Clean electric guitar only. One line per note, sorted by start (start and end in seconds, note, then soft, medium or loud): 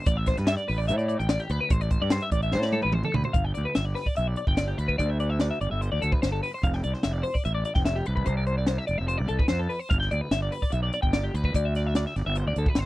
0.07 0.17 D5 medium
0.17 0.28 E5 medium
0.28 0.37 C5 medium
0.37 0.48 B4 medium
0.48 0.56 E5 medium
0.57 0.68 D5 medium
0.68 0.79 B4 medium
0.78 0.88 D5 medium
0.88 0.97 E5 medium
0.98 1.07 D5 medium
1.08 1.19 D5 medium
1.19 1.30 G5 medium
1.30 1.40 D5 medium
1.40 1.51 G4 medium
1.51 1.59 B4 medium
1.61 1.71 B4 medium
1.71 1.81 C5 medium
1.81 1.91 D5 medium
1.91 2.02 C5 medium
2.02 2.12 D5 medium
2.12 2.22 C5 medium
2.22 2.32 E5 medium
2.32 2.43 D5 medium
2.43 2.53 E5 medium
2.53 2.63 C5 medium
2.63 2.73 D5 medium
2.73 2.82 A4 medium
2.83 2.93 B4 medium
2.93 3.04 C5 medium
3.05 3.14 A4 medium
3.14 3.24 B4 medium
3.25 3.35 C5 medium
3.33 3.45 F5 medium
3.45 3.54 G5 medium
3.54 3.65 D5 medium
3.65 3.76 B4 medium
3.75 3.85 E5 medium
3.85 3.96 D5 medium
3.95 4.06 B4 medium
4.07 4.16 D5 medium
4.17 4.28 E5 medium
4.28 4.36 D5 medium
4.37 4.48 D5 medium
4.48 4.58 G5 medium
4.58 4.68 D5 medium
4.68 4.78 G4 medium
4.78 4.87 B4 medium
4.88 4.98 B4 medium
4.98 5.09 D5 medium
5.10 5.20 E5 medium
5.20 5.30 D5 medium
5.30 5.40 E5 medium
5.41 5.50 D5 medium
5.51 5.61 E5 medium
5.61 5.71 D5 medium
5.71 5.81 E5 medium
5.81 5.91 C5 medium
5.92 6.02 D5 medium
6.02 6.12 A4 medium
6.12 6.22 B4 medium
6.22 6.32 C5 medium
6.32 6.42 A4 medium
6.43 6.53 B4 medium
6.54 6.64 C5 medium
6.64 6.74 F5 medium
6.74 6.83 G5 medium
6.84 6.94 D5 medium
6.94 7.03 C5 medium
7.03 7.13 E5 medium
7.13 7.24 D5 medium
7.23 7.35 C5 medium
7.34 7.45 D5 medium
7.45 7.54 E5 medium
7.55 7.64 D5 medium
7.65 7.75 D5 medium
7.75 7.85 G5 medium
7.85 7.96 E5 medium
7.96 8.06 G4 medium
8.06 8.14 B4 medium
8.16 8.27 B4 medium
8.26 8.37 C5 medium
8.37 8.46 D5 medium
8.47 8.57 C5 medium
8.58 8.67 D5 medium
8.68 8.78 C5 medium
8.78 8.87 E5 medium
8.87 8.98 D5 medium
8.98 9.08 E5 medium
9.08 9.18 C5 medium
9.18 9.29 D5 medium
9.29 9.40 A4 medium
9.39 9.48 B4 medium
9.49 9.60 C5 medium
9.59 9.70 A4 medium
9.69 9.80 B4 medium
9.80 9.91 C5 medium
9.90 9.99 F5 medium
10.00 10.11 G5 medium
10.11 10.21 D5 medium
10.21 10.32 B4 medium
10.32 10.42 E5 medium
10.42 10.53 D5 medium
10.52 10.63 B4 medium
10.62 10.72 D5 medium
10.72 10.82 E5 medium
10.83 10.93 D5 medium
10.94 11.02 D5 medium
11.02 11.13 G5 medium
11.13 11.24 D5 medium
11.23 11.35 G4 medium
11.35 11.44 B4 medium
11.45 11.55 B4 medium
11.56 11.65 D5 medium
11.65 11.75 E5 medium
11.76 11.87 D5 medium
11.87 11.96 E5 medium
11.96 12.06 D5 medium
12.07 12.16 E5 medium
12.16 12.26 D5 medium
12.26 12.37 E5 medium
12.37 12.47 C5 medium
12.48 12.57 D5 medium
12.58 12.68 A4 medium
12.68 12.79 B4 medium
12.79 12.86 C5 medium